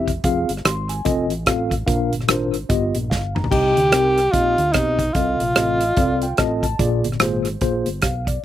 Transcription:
Already playing: fingered electric bass E1, tine electric piano C4 E4 G4 E5
0.08 kick, closed hi-hat
0.24 fingered electric bass F1, tine electric piano C4 F4 G#4 F5, kick, closed hi-hat
0.49 fingered electric bass G1, closed hi-hat
0.57 cross-stick
0.65 fingered electric bass G#1, tine electric piano C6, cross-stick, closed hi-hat
0.89 tine electric piano G#5, closed hi-hat
1.05 fingered electric bass F1, tine electric piano C4 F4 A4 D#5, kick, closed hi-hat
1.30 fingered electric bass A1, closed hi-hat
1.46 fingered electric bass A1, tine electric piano C4 F4 A4 F5, kick, cross-stick, closed hi-hat
1.71 kick, closed hi-hat
1.86 fingered electric bass A#1, tine electric piano A#2 D4 F4 A#4 F5, kick, closed hi-hat
2.13 fingered electric bass G1, closed hi-hat
2.21 cross-stick
2.28 fingered electric bass G#1, tine electric piano D4 F4 A#4 C5, cross-stick, closed hi-hat
2.54 closed hi-hat
2.69 fingered electric bass G1, tine electric piano G2 B3 F4 G4 D#5, kick, closed hi-hat
2.95 fingered electric bass A#1, closed hi-hat
3.10 fingered electric bass G1, tine electric piano F5, kick, snare
3.35 tine electric piano A#5, mid tom
3.44 floor tom
3.51 fingered electric bass C2, tine electric piano C3 C4 D#4 G4 D#5, tenor saxophone G4, kick, crash
3.77 fingered electric bass D2, closed hi-hat
3.91 fingered electric bass C2, tine electric piano C4 D#4 G4 A#4, cross-stick, closed hi-hat
4.18 cross-stick, closed hi-hat
4.32 fingered electric bass A#1, tine electric piano C4 D#4 G4 D#5, tenor saxophone F4, kick, closed hi-hat
4.58 fingered electric bass D2, closed hi-hat
4.72 fingered electric bass B1, tine electric piano C4 D#4 G4 D#5, tenor saxophone D#4, kick, cross-stick, closed hi-hat
4.99 kick, closed hi-hat
5.13 fingered electric bass C2, tine electric piano C3 C4 F4 A4 D#5, tenor saxophone F4, kick, closed hi-hat
5.40 fingered electric bass A#1, closed hi-hat
5.56 fingered electric bass A1, tine electric piano C4 F4 A4 D#5, cross-stick, closed hi-hat
5.80 tine electric piano D#5, closed hi-hat
5.97 fingered electric bass C2, tine electric piano C4 F4 A4 D5 F5, kick, closed hi-hat
6.22 tine electric piano G5, closed hi-hat
6.37 fingered electric bass A1, tine electric piano C4 F4 A4 D#5 A5, kick, cross-stick, closed hi-hat
6.63 tine electric piano A5, kick, closed hi-hat
6.79 fingered electric bass A#1, tine electric piano A#2 A#3 F4 G#4 D5, kick, closed hi-hat
7.04 fingered electric bass G1, closed hi-hat
7.12 cross-stick
7.20 fingered electric bass G#1, tine electric piano A#3 F4 G#4 C5, cross-stick, closed hi-hat
7.45 cross-stick, closed hi-hat
7.61 fingered electric bass A#1, tine electric piano A#3 F4 G#4 C5, kick, closed hi-hat
7.86 fingered electric bass G1, closed hi-hat
8.02 fingered electric bass B1, tine electric piano F5, kick, cross-stick, closed hi-hat
8.27 tine electric piano D5, kick, closed hi-hat

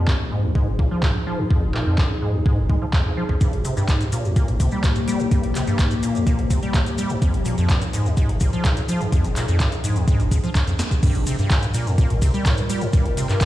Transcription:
Already playing: ambient pad F3 D#4 G#4
0.08 acid bass G2, kick, clap
0.20 acid bass F2
0.32 acid bass G#2
0.44 acid bass D#2
0.55 acid bass G#2, kick
0.67 acid bass F1
0.79 acid bass A#2, kick
0.91 acid bass F3
1.03 acid bass G2, kick, clap
1.15 acid bass F2
1.27 acid bass F3
1.39 acid bass F2
1.51 acid bass F2, kick
1.63 acid bass F1
1.74 acid bass A#2, clap
1.86 acid bass F2
1.98 acid bass G2, kick, clap
2.10 acid bass F2
2.22 acid bass G#2
2.34 acid bass D#2
2.46 acid bass G#2, kick
2.58 acid bass F1
2.70 acid bass G#3, kick
2.82 acid bass F3
2.93 acid bass F2, kick, clap
3.06 acid bass F2
3.17 acid bass F3
3.29 acid bass F2, kick
3.41 acid bass G2, ambient pad F3 A#3 G4, kick, closed hi-hat, maracas
3.53 acid bass G1, closed hi-hat
3.65 acid bass C3, open hi-hat, maracas
3.77 acid bass G2, closed hi-hat, maracas
3.88 acid bass G#2, kick, clap, closed hi-hat, maracas
4.01 acid bass G2, closed hi-hat, maracas
4.12 acid bass A#2, open hi-hat, maracas
4.25 acid bass F2, maracas
4.36 acid bass A#2, kick, closed hi-hat, maracas
4.48 acid bass G1, closed hi-hat
4.60 acid bass C3, kick, open hi-hat, maracas
4.71 acid bass G3, closed hi-hat, maracas
4.83 acid bass G#2, kick, clap, closed hi-hat, maracas
4.95 acid bass G2, closed hi-hat, maracas
5.08 acid bass G3, open hi-hat, maracas
5.20 acid bass G2, closed hi-hat, maracas
5.31 acid bass G2, kick, closed hi-hat, maracas
5.43 acid bass G1, closed hi-hat
5.55 acid bass C3, clap, open hi-hat, maracas
5.67 acid bass G2, closed hi-hat, maracas
5.79 acid bass G#2, kick, clap, closed hi-hat, maracas
5.91 acid bass G2, closed hi-hat, maracas
6.03 acid bass A#2, open hi-hat, maracas
6.15 acid bass F2, closed hi-hat, maracas
6.27 acid bass A#2, kick, closed hi-hat, maracas
6.39 acid bass G1, closed hi-hat
6.50 acid bass C3, kick, open hi-hat, maracas
6.63 acid bass G3, closed hi-hat, maracas
6.74 acid bass G#2, kick, clap, closed hi-hat, maracas
6.86 acid bass G2, closed hi-hat, maracas
6.98 acid bass G3, open hi-hat, maracas
7.09 acid bass G2, closed hi-hat, maracas
7.22 acid bass F2, ambient pad D#4 G#4, kick, closed hi-hat, maracas
7.34 acid bass F1, closed hi-hat
7.45 acid bass A#2, open hi-hat, maracas
7.58 acid bass F2, closed hi-hat, maracas
7.69 acid bass G2, kick, clap, closed hi-hat, maracas
7.81 acid bass F2, closed hi-hat, maracas
7.93 acid bass G#2, open hi-hat, maracas
8.06 acid bass D#2, maracas
8.17 acid bass G#2, kick, closed hi-hat, maracas
8.29 acid bass F1, closed hi-hat
8.40 acid bass A#2, kick, open hi-hat, maracas
8.53 acid bass F3, closed hi-hat, maracas
8.65 acid bass G2, kick, clap, closed hi-hat, maracas
8.77 acid bass F2, closed hi-hat, maracas
8.89 acid bass F3, open hi-hat, maracas
9.01 acid bass F2, closed hi-hat, maracas
9.12 acid bass F2, ambient pad D4, kick, closed hi-hat, maracas
9.24 acid bass F1, closed hi-hat, maracas
9.36 acid bass A#2, clap, open hi-hat, maracas
9.48 acid bass F2, closed hi-hat, maracas
9.60 acid bass G2, kick, clap, closed hi-hat, maracas
9.72 acid bass F2, closed hi-hat, maracas
9.84 acid bass G#2, open hi-hat, maracas
9.96 acid bass D#2, closed hi-hat, maracas
10.08 acid bass G#2, kick, closed hi-hat, maracas
10.20 acid bass F1, closed hi-hat, maracas
10.31 acid bass F2, kick, open hi-hat, maracas
10.44 acid bass F3, closed hi-hat, maracas
10.55 acid bass F2, kick, clap, closed hi-hat, maracas
10.67 acid bass F2, closed hi-hat, maracas
10.79 acid bass F2, snare, open hi-hat, maracas
10.91 acid bass C3, kick, closed hi-hat, maracas
11.03 acid bass G2, ambient pad G3 F4 A#4, kick, closed hi-hat, ride, crash, maracas
11.15 acid bass G1, closed hi-hat
11.26 acid bass C3, open hi-hat, ride, maracas
11.39 acid bass G2, closed hi-hat, maracas
11.51 acid bass G#2, kick, clap, closed hi-hat, ride, maracas
11.62 acid bass G2, closed hi-hat, maracas
11.74 acid bass A#2, open hi-hat, ride, maracas
11.86 acid bass F2, maracas
11.98 acid bass A#2, kick, closed hi-hat, ride, maracas
12.10 acid bass G1, closed hi-hat
12.22 acid bass C3, kick, open hi-hat, ride, maracas
12.34 acid bass G3, closed hi-hat, maracas
12.46 acid bass G#2, kick, clap, closed hi-hat, ride, maracas
12.57 acid bass G2, closed hi-hat, maracas
12.70 acid bass G3, open hi-hat, ride, maracas
12.81 acid bass G2, closed hi-hat, maracas
12.93 acid bass G2, kick, closed hi-hat, ride, maracas
13.05 acid bass G1, closed hi-hat
13.17 acid bass C3, open hi-hat, ride, maracas
13.29 acid bass G2, clap, closed hi-hat, maracas
13.41 acid bass G#2, kick, clap, closed hi-hat, ride, maracas

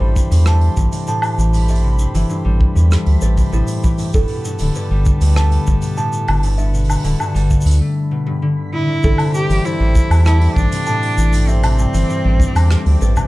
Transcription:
Already playing: harp G2 E3 A3, harmonium A3 G4 C5, music box C5, synth texture B5
0.00 analog synth bass A1, harp G3
0.16 kick, shaker
0.31 analog synth bass E2, harp G2, open hi-hat, shaker
0.46 harp A3, music box A5, cross-stick, shaker
0.61 open hi-hat
0.76 analog synth bass A1, harp G2, kick, shaker
0.92 harp C3, open hi-hat, shaker
1.07 harp A2, music box A5, shaker
1.22 open hi-hat, low woodblock, shaker
1.38 analog synth bass A1, harp E3, shaker
1.53 harp G2, open hi-hat, shaker
1.68 harp G2, music box E5, shaker
1.75 open hi-hat
1.84 harp C3
1.99 harp G2, shaker
2.14 analog synth bass G1, harp E3, open hi-hat, shaker
2.30 harp G2, shaker
2.45 analog synth bass A1, harp G3
2.61 kick
2.75 analog synth bass E2, harp G2, shaker
2.91 harp A3, cross-stick, shaker
3.06 analog synth bass D2, open hi-hat
3.21 analog synth bass A1, harp G2, music box B4, shaker
3.37 harp C3, kick, open hi-hat, shaker
3.52 analog synth bass A1, harp A2, music box E4, shaker
3.67 open hi-hat, shaker
3.83 harp E3, kick, shaker
3.98 harp G2, open hi-hat, shaker
4.14 analog synth bass G1, harp G2, harmonium B3 A4, music box A4, kick, shaker
4.28 harp B2, open hi-hat
4.44 harp G2, shaker
4.59 analog synth bass D1, harp D3, open hi-hat, shaker
4.75 harp G2, music box B4, shaker
4.90 analog synth bass G1, harp G3
5.06 kick, shaker
5.21 analog synth bass D2, harp G2, open hi-hat, shaker
5.36 harp A3, music box A5, cross-stick, shaker
5.52 open hi-hat
5.66 analog synth bass G1, harp G2, kick, shaker
5.82 harp B2, open hi-hat, shaker
5.97 harp A2, music box A5, shaker
6.13 shaker
6.28 analog synth bass G1, harp D3, open hi-hat, low woodblock
6.43 harp G2, open hi-hat, shaker
6.58 harp G2, harmonium F#4, music box E5, shaker
6.74 harp B2, open hi-hat, shaker
6.79 open hi-hat
6.84 open hi-hat
6.89 harp G2, open hi-hat, low woodblock, shaker
6.95 open hi-hat
7.00 open hi-hat
7.04 analog synth bass D1, harp D3, open hi-hat, shaker
7.19 harp G2, low woodblock, shaker
7.34 analog synth bass G1, harp G3, open hi-hat, shaker
7.51 kick, shaker
7.61 shaker
7.65 analog synth bass D2, harp G2, open hi-hat, shaker
7.71 shaker
7.81 harp A3
8.11 harp B2
8.26 harp G2
8.42 harp D3
8.72 harp A2, cello E4
8.88 harp D3
9.03 analog synth bass A1, harp G2, harmonium G3 A3 C4, music box A4, synth texture D6, kick, shaker
9.18 harp C3, open hi-hat, low woodblock
9.34 harp G2, cello G4, shaker
9.49 analog synth bass G1, harp E3, open hi-hat, shaker
9.64 harp G2, cello E4, music box C5, shaker
9.80 analog synth bass A1, harp G3
9.95 kick, shaker
10.10 analog synth bass E2, harp G2, open hi-hat, low woodblock, shaker
10.25 harp A3, cello E4, music box A5, cross-stick, shaker
10.41 open hi-hat
10.56 analog synth bass A1, harp G2, cello D4, kick, shaker
10.71 harp C3, open hi-hat, shaker
10.86 harp A2, music box A5, shaker
11.03 open hi-hat
11.17 analog synth bass A1, harp E3, shaker
11.33 harp G2, open hi-hat, shaker
11.47 harp G2, cello C4, music box E5, shaker
11.63 harp C3, open hi-hat, low woodblock
11.78 harp G2, shaker
11.94 analog synth bass G1, harp E3, open hi-hat, shaker
12.09 harp G2, shaker
12.24 analog synth bass A1, harp G3
12.40 kick, shaker
12.55 analog synth bass E2, harp G2, open hi-hat, low woodblock, shaker
12.70 harp A3, cross-stick, shaker
12.86 analog synth bass D2, open hi-hat
13.00 analog synth bass A1, harp G2, music box B4, shaker
13.16 harp C3, kick, low woodblock, shaker

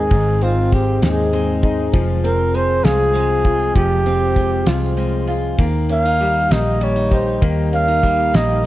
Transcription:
Already playing: fingered electric bass D#2, clean electric guitar G#2 G#3 C4 D#4, steel-string acoustic guitar D#3 G#3 C4 G#4, flugelhorn G#4
0.11 fingered electric bass G#1, clean electric guitar G#2, steel-string acoustic guitar D#3, kick, ride
0.41 steel-string acoustic guitar C4, clean electric guitar C4, flugelhorn F4, ride
0.72 clean electric guitar G#3, flugelhorn G4, kick, ride
1.02 fingered electric bass D#2, steel-string acoustic guitar G#3, clean electric guitar D#4, flugelhorn G#4, snare, ride
1.33 clean electric guitar G#3, steel-string acoustic guitar C4, ride
1.63 clean electric guitar D#4, steel-string acoustic guitar G#4, kick, ride
1.93 fingered electric bass F1, clean electric guitar F3, steel-string acoustic guitar F3, kick, ride
2.24 steel-string acoustic guitar C4, clean electric guitar C4, flugelhorn A#4, ride
2.54 clean electric guitar G#3, steel-string acoustic guitar G#4, flugelhorn C5, ride
2.84 fingered electric bass C2, steel-string acoustic guitar G#3, clean electric guitar F4, flugelhorn G#4, snare, ride
3.14 clean electric guitar G#3, steel-string acoustic guitar C4, ride
3.45 clean electric guitar F4, kick, ride
3.76 fingered electric bass F1, steel-string acoustic guitar F3, clean electric guitar F3, flugelhorn G4, kick, ride
4.06 steel-string acoustic guitar C4, clean electric guitar C4, ride
4.36 clean electric guitar G#3, kick, ride
4.66 fingered electric bass C2, steel-string acoustic guitar G#3, clean electric guitar F4, flugelhorn F4, snare, ride
4.97 clean electric guitar G#3, steel-string acoustic guitar C4, ride
5.27 clean electric guitar F4, steel-string acoustic guitar G#4, ride
5.58 fingered electric bass D#2, clean electric guitar D#3, steel-string acoustic guitar A#3, kick, ride
5.89 clean electric guitar A#3, steel-string acoustic guitar C#4, flugelhorn F5, ride
6.05 steel-string acoustic guitar D#4
6.20 clean electric guitar G3, steel-string acoustic guitar G4, ride
6.50 fingered electric bass A#1, steel-string acoustic guitar A#3, clean electric guitar D#4, flugelhorn D#5, snare, ride
6.81 clean electric guitar G3, steel-string acoustic guitar C#4, flugelhorn C#5, ride
6.96 steel-string acoustic guitar D#4
7.11 clean electric guitar D#4, steel-string acoustic guitar G4, flugelhorn C5, kick, ride
7.42 fingered electric bass D#2, clean electric guitar D#3, steel-string acoustic guitar A#3, kick, ride
7.73 clean electric guitar A#3, steel-string acoustic guitar C#4, flugelhorn F5, ride
7.88 steel-string acoustic guitar D#4
8.03 clean electric guitar G3, steel-string acoustic guitar G4, kick, ride
8.33 fingered electric bass A#1, steel-string acoustic guitar A#3, clean electric guitar D#4, flugelhorn D#5, snare, ride

